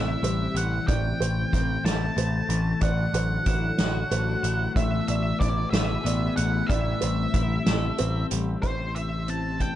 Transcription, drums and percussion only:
0.24 closed hi-hat medium
0.56 closed hi-hat medium
0.88 kick loud
0.88 closed hi-hat medium
1.22 closed hi-hat medium
1.53 kick medium
1.53 closed hi-hat medium
1.86 snare medium
1.86 closed hi-hat medium
2.18 closed hi-hat medium
2.50 closed hi-hat medium
2.81 kick medium
2.81 closed hi-hat medium
3.14 closed hi-hat medium
3.46 kick medium
3.46 closed hi-hat medium
3.78 snare medium
3.78 closed hi-hat medium
4.11 closed hi-hat medium
4.44 closed hi-hat medium
4.76 kick loud
4.76 closed hi-hat medium
5.08 closed hi-hat medium
5.41 kick medium
5.41 closed hi-hat medium
5.73 snare loud
5.73 closed hi-hat medium
6.06 closed hi-hat medium
6.37 closed hi-hat medium
6.70 kick loud
6.70 closed hi-hat medium
7.01 closed hi-hat medium
7.34 kick medium
7.34 closed hi-hat medium
7.66 snare loud
7.66 closed hi-hat medium
7.98 closed hi-hat medium
8.31 closed hi-hat medium
8.63 kick medium
8.63 closed hi-hat medium
8.96 closed hi-hat soft
9.28 closed hi-hat soft
9.60 kick soft
9.60 closed hi-hat medium

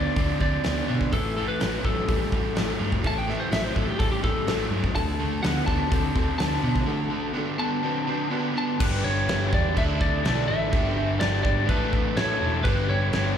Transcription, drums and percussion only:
0.16 kick loud
0.16 open hi-hat medium
0.41 kick medium
0.64 snare loud
0.64 open hi-hat medium
1.01 kick medium
1.13 kick medium
1.13 open hi-hat medium
1.60 snare loud
1.60 open hi-hat medium
1.85 kick medium
2.09 kick loud
2.09 open hi-hat medium
2.32 kick medium
2.56 snare loud
2.56 open hi-hat medium
2.92 kick medium
3.04 kick loud
3.04 open hi-hat medium
3.29 snare soft
3.52 snare loud
3.52 open hi-hat medium
3.76 kick medium
4.00 kick loud
4.00 open hi-hat medium
4.24 kick medium
4.47 snare loud
4.47 open hi-hat medium
4.84 kick medium
4.95 kick loud
4.95 open hi-hat medium
5.44 snare loud
5.44 open hi-hat medium
5.68 kick medium
5.92 kick loud
5.92 open hi-hat medium
6.16 kick medium
6.40 snare loud
6.40 open hi-hat medium
6.76 kick medium
8.80 kick loud
8.80 crash loud
8.80 crash medium
9.29 snare loud
9.29 crash medium
9.53 kick medium
9.77 kick medium
9.77 crash medium
10.01 kick medium
10.25 snare loud
10.25 crash medium
10.72 kick loud
10.72 crash medium
11.20 snare loud
11.20 crash medium
11.45 kick medium
11.69 kick loud
11.69 crash medium
11.93 kick medium
12.17 snare loud
12.17 crash medium
12.65 kick loud
12.65 crash medium
13.13 snare loud
13.13 crash medium

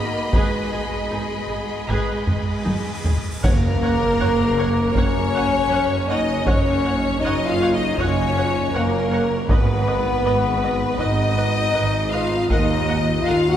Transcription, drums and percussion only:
0.33 taiko medium
1.89 taiko medium
2.27 taiko low-mid medium
2.66 taiko high medium
3.05 taiko low medium
3.44 taiko loud
4.95 taiko medium
6.46 taiko loud
7.98 taiko medium
9.49 taiko loud
11.00 taiko medium
12.50 taiko medium

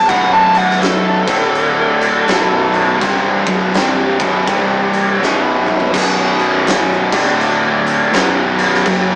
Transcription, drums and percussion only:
0.09 kick loud
0.09 crash medium
0.55 crash medium
0.70 snare soft
0.82 snare loud
0.82 crash medium
1.28 kick loud
1.28 crash loud
1.55 crash medium
2.01 crash medium
2.28 snare loud
2.28 crash medium
2.74 crash medium
3.01 kick loud
3.01 crash medium
3.47 kick loud
3.47 crash medium
3.74 snare loud
3.74 crash medium
4.20 kick loud
4.20 crash medium
4.47 kick loud
4.47 crash medium
4.93 crash medium
5.22 snare medium
5.67 mid tom medium
5.80 floor tom medium
5.94 kick loud
5.94 crash loud
5.94 crash medium
6.39 crash medium
6.67 snare loud
6.67 crash medium
7.12 kick loud
7.12 crash loud
7.41 crash medium
7.86 crash medium
8.13 snare loud
8.13 crash medium
8.59 crash medium
8.74 snare soft
8.86 kick loud
8.86 crash loud

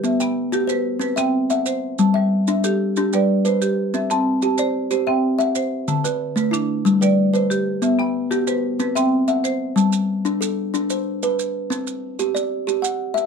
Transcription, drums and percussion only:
0.04 maracas medium
0.20 maracas medium
0.53 maracas medium
0.69 maracas medium
1.01 maracas medium
1.17 maracas medium
1.50 maracas medium
1.66 maracas medium
1.99 maracas medium
2.47 maracas medium
2.64 maracas medium
2.96 maracas medium
3.13 maracas medium
3.45 maracas medium
3.62 maracas medium
3.94 maracas medium
4.11 maracas medium
4.42 maracas medium
4.58 maracas medium
4.91 maracas medium
5.40 maracas medium
5.55 maracas medium
5.88 maracas soft
6.05 maracas medium
6.37 maracas medium
6.53 maracas medium
6.86 maracas medium
7.02 maracas medium
7.35 maracas medium
7.51 maracas medium
7.82 maracas medium
8.32 maracas medium
8.47 maracas medium
8.80 maracas medium
8.96 maracas medium
9.28 maracas soft
9.45 maracas medium
9.77 maracas medium
9.92 maracas medium
10.26 maracas medium
10.42 maracas medium
10.74 maracas medium
10.90 maracas medium
11.23 maracas medium
11.39 maracas medium
11.72 maracas medium
11.87 maracas medium
12.19 maracas medium
12.36 maracas medium
12.68 maracas medium
12.84 maracas medium
13.17 maracas medium

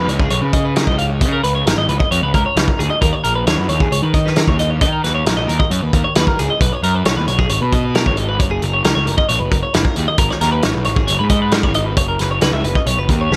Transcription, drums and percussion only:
0.09 closed hi-hat medium
0.20 kick medium
0.30 closed hi-hat medium
0.53 kick medium
0.53 closed hi-hat medium
0.76 snare loud
0.76 closed hi-hat medium
0.87 kick medium
0.98 closed hi-hat medium
1.21 kick loud
1.21 closed hi-hat loud
1.44 closed hi-hat medium
1.67 snare loud
1.67 closed hi-hat loud
1.89 closed hi-hat medium
2.00 kick medium
2.12 closed hi-hat medium
2.34 kick medium
2.34 closed hi-hat medium
2.56 snare loud
2.56 closed hi-hat medium
2.68 kick medium
2.80 closed hi-hat medium
3.02 kick loud
3.02 closed hi-hat medium
3.24 closed hi-hat medium
3.47 snare loud
3.47 closed hi-hat medium
3.69 closed hi-hat medium
3.80 kick medium
3.92 closed hi-hat medium
4.14 kick medium
4.14 closed hi-hat medium
4.27 snare soft
4.36 snare loud
4.36 closed hi-hat medium
4.48 kick medium
4.59 closed hi-hat medium
4.81 kick loud
4.81 closed hi-hat medium
5.04 snare soft
5.04 closed hi-hat medium
5.26 snare loud
5.26 closed hi-hat loud
5.49 closed hi-hat medium
5.60 kick medium
5.71 closed hi-hat medium
5.93 kick medium
5.93 closed hi-hat medium
6.15 snare loud
6.15 closed hi-hat medium
6.27 kick medium
6.39 closed hi-hat medium
6.61 kick loud
6.61 closed hi-hat medium
6.83 closed hi-hat medium
7.05 snare loud
7.05 closed hi-hat medium
7.28 closed hi-hat medium
7.39 kick medium
7.49 closed hi-hat medium
7.72 kick medium
7.72 closed hi-hat medium
7.95 snare loud
7.95 closed hi-hat medium
8.06 kick medium
8.17 closed hi-hat medium
8.40 kick loud
8.40 closed hi-hat medium
8.62 closed hi-hat medium
8.84 snare loud
8.84 closed hi-hat loud
9.07 closed hi-hat medium
9.18 kick medium
9.29 closed hi-hat medium
9.52 kick medium
9.52 closed hi-hat medium
9.74 snare loud
9.74 closed hi-hat loud
9.85 kick medium
9.96 closed hi-hat medium
10.18 kick loud
10.18 closed hi-hat loud
10.31 snare soft
10.41 snare soft
10.41 closed hi-hat medium
10.62 snare loud
10.62 closed hi-hat medium
10.84 closed hi-hat medium
10.96 kick medium
11.08 closed hi-hat medium
11.29 kick medium
11.29 closed hi-hat medium
11.51 snare loud
11.51 closed hi-hat medium
11.63 kick medium
11.74 closed hi-hat medium
11.97 kick loud
11.97 closed hi-hat medium
12.19 snare soft
12.19 closed hi-hat medium
12.41 snare loud
12.41 closed hi-hat loud
12.64 closed hi-hat medium
12.75 kick medium
12.86 closed hi-hat loud
13.09 kick medium
13.09 closed hi-hat medium
13.32 snare medium

